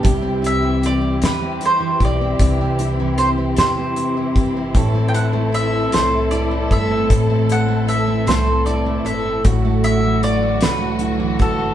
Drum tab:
HH |xxxxxx|xxxxxx|xxxxxx|xxxxxx|
SD |---o--|---o--|---o--|---o--|
BD |o----o|o----o|o----o|o-----|

HH |xxxxxx|
SD |---o--|
BD |o----o|